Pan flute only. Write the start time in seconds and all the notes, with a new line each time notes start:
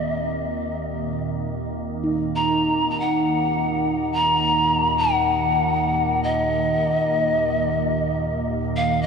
Already playing: D#5
2.35 A#5
2.90 A#5
3.00 F#5
4.12 A#5
4.98 F#5
6.23 D#5
8.76 F5
9.02 D#5